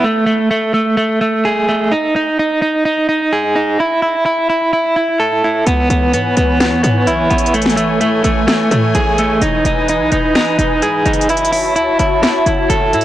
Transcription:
0.04 clean electric guitar A3
0.26 clean electric guitar A3
0.51 clean electric guitar A3
0.74 clean electric guitar A3
0.97 clean electric guitar A3
1.21 clean electric guitar A3
1.45 clean electric guitar G#4
1.69 clean electric guitar A3
1.92 clean electric guitar D#4
2.16 clean electric guitar D#4
2.39 clean electric guitar D#4
2.62 clean electric guitar D#4
2.85 clean electric guitar D#4
3.09 clean electric guitar D#4
3.33 clean electric guitar G#4
3.56 clean electric guitar D#4
3.80 clean electric guitar E4
4.02 clean electric guitar E4
4.26 clean electric guitar E4
4.50 clean electric guitar E4
4.73 clean electric guitar E4
4.96 clean electric guitar E4
5.20 clean electric guitar A4
5.44 clean electric guitar E4
5.67 808-style bass C#2, analog synth pad E3 B4 C#5 G#5, clean electric guitar B3, closed hi-hat
5.90 808-style bass C#2, clean electric guitar B3, closed hi-hat
6.13 808-style bass G#2, clean electric guitar B3, closed hi-hat
6.37 808-style bass C#2, clean electric guitar B3, closed hi-hat
6.60 clean electric guitar B3, finger snap, snare, closed hi-hat
6.72 808-style bass E2
6.83 808-style bass G#2, clean electric guitar B3, closed hi-hat
7.07 808-style bass B1, clean electric guitar E4, closed hi-hat
7.30 808-style bass A1, clean electric guitar B3, closed hi-hat
7.38 closed hi-hat
7.46 closed hi-hat
7.54 clean electric guitar A3, analog synth pad A3, closed hi-hat
7.62 closed hi-hat
7.66 snare, closed hi-hat
7.76 clean electric guitar A3, closed hi-hat
8.01 808-style bass A2, clean electric guitar A3, closed hi-hat
8.24 808-style bass A1, clean electric guitar A3, closed hi-hat
8.47 clean electric guitar A3, finger snap, snare, closed hi-hat
8.71 808-style bass A2, clean electric guitar A3, closed hi-hat
8.95 808-style bass A1, clean electric guitar G#4, closed hi-hat
9.18 clean electric guitar A3, closed hi-hat
9.42 808-style bass E1, clean electric guitar D#4, analog synth pad B4 D#5, closed hi-hat
9.65 808-style bass E1, clean electric guitar D#4, closed hi-hat
9.88 clean electric guitar D#4, closed hi-hat
10.00 808-style bass B1
10.12 808-style bass E1, clean electric guitar D#4, closed hi-hat
10.35 clean electric guitar D#4, finger snap, snare, closed hi-hat
10.59 808-style bass E1, clean electric guitar D#4, closed hi-hat
10.82 clean electric guitar G#4, closed hi-hat
11.06 808-style bass F#1, clean electric guitar D#4, closed hi-hat
11.13 closed hi-hat
11.21 closed hi-hat
11.29 clean electric guitar E4, analog synth pad F#4 C#5 E5 A5, closed hi-hat
11.37 closed hi-hat
11.45 closed hi-hat
11.52 clean electric guitar E4, open hi-hat
11.76 808-style bass C#2, clean electric guitar E4, closed hi-hat
11.88 808-style bass F#1
11.99 808-style bass F#1, clean electric guitar E4, closed hi-hat
12.23 clean electric guitar E4, finger snap, snare, closed hi-hat
12.46 808-style bass F#1, clean electric guitar E4, closed hi-hat
12.70 808-style bass F#1, clean electric guitar A4, closed hi-hat
12.93 808-style bass A2, clean electric guitar E4, closed hi-hat
13.01 closed hi-hat

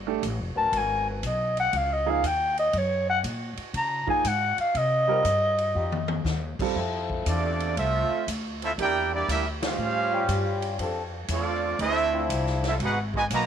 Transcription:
Already playing: upright bass G1
0.07 upright piano A3 D4 G4 A4
0.22 upright bass A1, kick, hi-hat pedal, ride
0.39 upright bass F1
0.55 upright bass D1, trombone section F#3 B3 C#4 A#4, clarinet A5
0.72 upright bass G#1, kick, ride
0.77 clarinet G#5
1.10 clarinet B4
1.23 upright bass B1, clarinet D#5, kick, hi-hat pedal, ride
1.57 clarinet F#5, ride
1.73 upright bass C#2, kick, ride
1.77 clarinet F5
1.93 clarinet D#5
2.06 upright piano F3 A#3 D#4 G#4, clarinet F5
2.23 upright bass D#2, clarinet G5, kick, hi-hat pedal, ride
2.58 clarinet D#5, ride
2.73 upright bass F#2, kick, ride
2.78 clarinet C#5
3.10 clarinet F#5
3.23 upright bass A#2, kick, hi-hat pedal, ride
3.57 muted upright bass stroke, ride
3.74 upright bass C#3, clarinet A#5, kick, ride
4.07 upright piano F3 A#3 D#4 G#4, clarinet G#5, muted upright bass stroke, kick
4.24 upright bass G#2, clarinet F#5, kick, hi-hat pedal, ride
4.58 clarinet F5, muted upright bass stroke, ride
4.75 upright bass C3, clarinet D#5, kick, ride
5.07 trombone section G3 C4 D#4 A#4, upright piano G3 C4 F4 A#4
5.24 upright bass G2, kick, hi-hat pedal, ride
5.58 ride
5.74 upright bass F2, trombone section G3 D#4 F4 G4
5.92 high tom
6.08 high tom
6.25 upright bass D#2, snare, hi-hat pedal
6.59 upright piano G3 C4 F4 A4, kick, crash
6.76 upright bass F2, trombone section F3 C4 E4 A4, kick
7.10 kick
7.26 upright bass E2, trombone section C3 A3 D4, trumpet section C4 F4 A4 D5, kick, hi-hat pedal, ride
7.60 ride
7.76 upright bass C2, trombone section A3 C4 F4, trumpet section C4 F4 A4 E5, kick, ride
8.10 muted upright bass stroke
8.27 upright bass D2, kick, hi-hat pedal, ride
8.62 trombone section A3 C4 E4, trumpet section C4 F4 A4 E5, ride
8.78 upright bass E2, trombone section G3 A#3 D4 E4 G4 A#4, trumpet section E4 A#4 D5 G5, kick, ride
9.13 trombone section G3 A#3 D4, trumpet section A#3 E4 G4 D5
9.28 upright bass D2, trombone section G3 A#3 E4, trumpet section D4 G4 A#4 E5, kick, hi-hat pedal, ride
9.62 trombone section G3 C#4 F4, trumpet section C#4 G4 C5 F5, snare, ride
9.78 upright bass A2
10.11 trombone section G3 C#4 F4 G4
10.28 upright bass G2, kick, hi-hat pedal, ride
10.62 ride
10.79 upright bass F2, trombone section F3 C4 D4 A4, kick, ride
11.28 upright bass E2, trombone section A3 D4 F4, trumpet section C4 F4 A4 D5, kick, hi-hat pedal, ride
11.79 upright bass D2, trombone section A3 C4 E4, trumpet section D4 A4 C5 E5, kick, ride
12.12 trombone section F3 C4 D4 E4
12.29 upright bass C2, kick, hi-hat pedal, ride
12.46 snare
12.63 trombone section E4, snare, ride
12.68 trumpet section C4 F4 A4 E5
12.80 upright bass G#1, trombone section B3 D#4 F#4, trumpet section D#4, kick, ride
12.84 trumpet section G#4 B4 F#5
13.14 trombone section B2 D#3 G#3, trumpet section F#4 B4 D#5 G#5, kick
13.30 upright bass B1, trombone section A#3, trumpet section F#4, kick, hi-hat pedal, ride
13.34 trumpet section B4 D#5 A#5

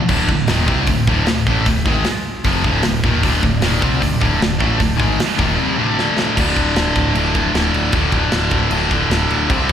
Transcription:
0.01 distorted electric guitar A#2 F3
0.08 picked electric bass D1, distorted electric guitar D2 A2 D3, kick, crash
0.29 picked electric bass D1, distorted electric guitar D2 A2, kick
0.48 picked electric bass D#1, distorted electric guitar D#2 A#2 D#3, snare, open hi-hat
0.68 picked electric bass C2, distorted electric guitar C3 G3 C4, kick
0.87 picked electric bass D1, distorted electric guitar D2 A2, kick, open hi-hat
1.07 picked electric bass D1, distorted electric guitar D2 A2 D3, kick
1.26 picked electric bass D1, distorted electric guitar D2 A2, snare, open hi-hat
1.47 picked electric bass A1, distorted electric guitar A2 E3 A3, kick
1.66 picked electric bass D1, distorted electric guitar D2 A2, kick, open hi-hat
1.86 picked electric bass G#1, distorted electric guitar G#2 D#3 G#3, kick
2.04 snare, open hi-hat
2.44 picked electric bass F1, distorted electric guitar F2 C3 F3, kick, open hi-hat
2.64 picked electric bass D1, distorted electric guitar D2 A2 D3, kick
2.83 picked electric bass D1, distorted electric guitar D2 A2, snare, open hi-hat
3.04 picked electric bass D#1, distorted electric guitar D#2 A#2 D#3, kick
3.23 picked electric bass D1, distorted electric guitar D2 A2 D3, pipe organ F3 A3 D4 A4 D5, kick, open hi-hat
3.43 picked electric bass D1, distorted electric guitar D2 A2, kick
3.62 picked electric bass D#1, distorted electric guitar D#2 A#2 D#3, snare, open hi-hat
3.82 picked electric bass C2, distorted electric guitar C3 G3 C4, kick
4.02 picked electric bass D1, distorted electric guitar D2 A2, kick, open hi-hat
4.21 picked electric bass D1, distorted electric guitar D2 A2 D3, kick
4.41 picked electric bass D1, distorted electric guitar D2 A2, snare, open hi-hat
4.59 picked electric bass A1, distorted electric guitar A2 E3 A3, kick
4.80 picked electric bass D1, distorted electric guitar D2 A2, kick, open hi-hat
4.99 picked electric bass G#1, distorted electric guitar G#2 D#3 G#3, kick
5.20 snare, open hi-hat
5.39 picked electric bass D#1, distorted electric guitar D#2 A#2 D#3, kick
5.58 distorted electric guitar C3 G3 C4
5.78 distorted electric guitar D2 A2 D3
5.99 snare
6.19 snare
6.35 picked electric bass D1, distorted electric guitar D2 A2, pipe organ F3 A3 D4 A4 D5, kick, crash
6.39 distorted electric guitar D3
6.56 picked electric bass D1, kick, crash
6.75 picked electric bass D1, snare, crash
6.96 picked electric bass D1, kick, crash
7.15 picked electric bass D1, distorted electric guitar D2 A2 D3, crash
7.34 distorted electric guitar D2 A2 D3, kick, crash
7.54 picked electric bass D1, distorted electric guitar D2 A2 D3, snare, crash
7.74 picked electric bass D1, crash
7.92 picked electric bass D1, distorted electric guitar D2 A2, kick, crash
7.97 distorted electric guitar D3
8.12 picked electric bass D1, kick, crash
8.32 picked electric bass D1, snare, crash
8.51 picked electric bass D1, kick, crash
8.70 picked electric bass D1, distorted electric guitar D2 A2, crash
8.75 distorted electric guitar D3
8.91 distorted electric guitar D2 A2 D3, kick, crash
9.10 picked electric bass D1, distorted electric guitar D2 A2 D3, snare, crash
9.30 picked electric bass D1, crash
9.49 picked electric bass C2, distorted electric guitar C3 G3 C4, pipe organ G3 C4 E4 C5 E5, kick, crash

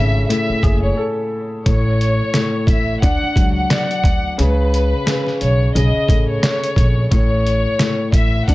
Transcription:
Already playing: upright bass G#1, grand piano C#3 A3 A4, violin section E5
0.28 grand piano A2, violin section E5, closed hi-hat, shaker
0.49 muted upright bass stroke
0.63 upright bass F#1, grand piano G#4, kick, closed hi-hat, high woodblock, shaker
0.83 violin section C#5
0.97 grand piano A4
1.65 upright bass A1, grand piano A2, violin section C#5, kick, closed hi-hat
2.01 closed hi-hat
2.33 grand piano A2, snare, closed hi-hat
2.67 upright bass A1, violin section E5, kick, closed hi-hat
3.01 upright bass D2, grand piano D4, violin section F#5, kick, closed hi-hat
3.22 muted upright bass stroke
3.36 upright bass C#2, grand piano F#3, kick, closed hi-hat
3.55 violin section F#5
3.70 grand piano D5, snare, closed hi-hat
3.91 closed hi-hat
4.04 upright bass D2, kick, closed hi-hat
4.38 upright bass C#2, grand piano C#3, violin section B4, closed hi-hat
4.74 closed hi-hat
5.06 grand piano C#3, snare, closed hi-hat
5.26 snare
5.41 upright bass B1, violin section C#5, closed hi-hat
5.75 upright bass B1, grand piano C#3, violin section D#5, closed hi-hat
5.95 muted upright bass stroke
6.08 upright bass A1, grand piano A3, kick, closed hi-hat
6.30 violin section C#5
6.42 grand piano C#5, snare, closed hi-hat
6.64 closed hi-hat
6.76 upright bass A#1, kick, closed hi-hat
7.11 upright bass A1, grand piano A2, violin section C#5, kick, closed hi-hat
7.47 closed hi-hat
7.79 grand piano A2, snare, closed hi-hat
8.12 upright bass A1, violin section E5, kick, closed hi-hat
8.48 upright bass D2, grand piano D4, violin section F#5, kick, closed hi-hat

